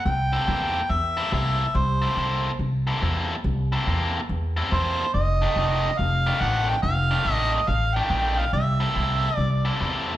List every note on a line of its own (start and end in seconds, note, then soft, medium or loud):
0.05 0.36 C2 medium
0.05 0.93 G5 loud
0.33 0.46 C3 medium
0.33 0.46 A#3 medium
0.33 0.46 E4 medium
0.33 0.47 A4 medium
0.47 0.79 E2 medium
0.47 0.80 C3 medium
0.47 0.80 A#3 medium
0.47 0.80 E4 medium
0.47 0.80 A4 medium
0.90 1.21 E2 medium
0.90 1.33 E5 medium
1.17 1.30 C3 medium
1.17 1.31 A#3 medium
1.17 1.31 E4 medium
1.17 1.31 A4 medium
1.31 1.63 C2 medium
1.31 1.64 C3 medium
1.31 1.64 A#3 medium
1.31 1.65 E4 medium
1.31 1.65 A4 medium
1.31 1.78 E5 medium
1.75 2.06 C2 medium
1.75 2.61 C5 medium
2.02 2.15 C3 medium
2.02 2.16 A#3 medium
2.02 2.16 E4 medium
2.02 2.17 A4 medium
2.17 2.48 C2 medium
2.17 2.49 C3 medium
2.17 2.50 A#3 medium
2.17 2.50 E4 medium
2.17 2.50 A4 medium
2.59 2.90 C2 medium
2.87 3.00 C3 medium
2.87 3.01 A#3 medium
2.87 3.01 E4 medium
2.87 3.01 A4 medium
3.02 3.33 E2 medium
3.02 3.34 C3 medium
3.02 3.34 A#3 medium
3.02 3.34 E4 medium
3.02 3.34 A4 medium
3.44 3.75 C2 loud
3.72 3.86 C3 medium
3.72 3.86 A#3 medium
3.72 3.86 E4 medium
3.72 3.86 A4 medium
3.87 4.18 E2 medium
3.87 4.19 C3 medium
3.87 4.19 A#3 medium
3.87 4.19 E4 medium
3.87 4.19 A4 medium
4.29 4.60 E2 medium
4.57 4.71 C3 medium
4.57 4.71 A#3 medium
4.57 4.72 E4 medium
4.57 4.72 A4 medium
4.72 5.03 E2 medium
4.72 5.04 C3 medium
4.72 5.04 A#3 medium
4.72 5.04 E4 medium
4.72 5.05 A4 medium
4.72 5.12 C5 medium
5.14 5.45 F1 medium
5.14 5.99 D#5 medium
5.42 5.56 F2 medium
5.42 5.56 D#3 medium
5.42 5.57 A3 medium
5.42 5.56 D4 medium
5.56 5.87 F1 medium
5.56 5.89 F2 medium
5.56 5.89 D#3 medium
5.56 5.89 A3 medium
5.56 5.90 D4 medium
5.98 6.30 F1 medium
5.98 6.42 F5 medium
6.27 6.41 F2 medium
6.27 6.41 D#3 medium
6.27 6.42 A3 medium
6.27 6.41 D4 medium
6.41 6.72 A1 medium
6.41 6.74 F2 medium
6.41 6.74 D#3 medium
6.41 6.74 A3 medium
6.41 6.74 D4 medium
6.41 6.70 F#5 loud
6.69 6.82 G5 medium
6.83 7.14 F1 medium
6.83 7.34 F5 loud
7.11 7.25 F2 medium
7.11 7.25 D#3 medium
7.11 7.26 A3 medium
7.11 7.26 D4 medium
7.25 7.56 A1 medium
7.25 7.58 F2 medium
7.25 7.58 D#3 medium
7.25 7.59 A3 medium
7.25 7.59 D4 medium
7.34 7.54 D#5 loud
7.54 7.70 D#5 medium
7.68 7.99 A1 medium
7.68 7.96 F5 medium
7.95 8.09 F2 medium
7.95 8.09 D#3 medium
7.95 8.10 A3 medium
7.95 8.10 D4 medium
7.95 8.40 G5 medium
8.10 8.41 A#1 medium
8.10 8.43 F2 medium
8.10 8.43 D#3 medium
8.10 8.43 A3 medium
8.10 8.43 D4 medium
8.38 8.53 F5 medium
8.53 8.84 C2 medium
8.53 9.37 E5 medium
8.80 8.94 C3 medium
8.80 8.94 A#3 medium
8.80 8.95 E4 medium
8.80 8.95 A4 medium
8.95 9.27 C2 medium
8.95 9.27 C3 medium
8.95 9.28 A#3 medium
8.95 9.28 E4 medium
8.95 9.28 A4 medium
9.37 9.69 C2 medium
9.37 9.77 D5 medium
9.65 9.79 C3 medium
9.65 9.79 A#3 medium
9.65 9.79 E4 medium
9.65 9.80 A4 loud
9.80 10.12 E2 medium
9.80 10.12 C3 medium
9.80 10.13 A#3 medium
9.80 10.13 E4 medium
9.80 10.13 A4 medium